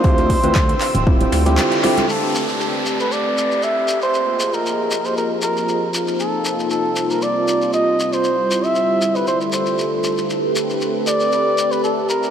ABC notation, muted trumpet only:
X:1
M:4/4
L:1/16
Q:"Swing 16ths" 1/4=117
K:Am
V:1 name="Muted trumpet"
c12 z4 | A4 A3 B d4 e3 c- | c3 _B4 c B2 B4 z2 | A4 A3 _B d4 _e3 c- |
c3 e4 B c2 c4 z2 | z6 d4- d B A2 _B2 |]